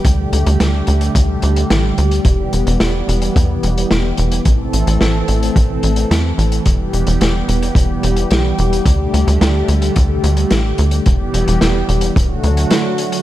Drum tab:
HH |x-xxx-xxx-xxx-xx|x-xxx-xxx-xxx-xx|x-xxx-xxx-xxx-xx|x-xxx-xxx-xxx-xx|
SD |----o-------o---|----o-------o---|----o-------o---|----o-------o---|
BD |o-------o-------|o-------o-------|o-------o-------|o-------o-------|

HH |x-xxx-xxx-xxx-xx|x-xxx-xxx-xxx-xx|
SD |----o-------o---|----o-------o---|
BD |o-------o-------|o-------o-------|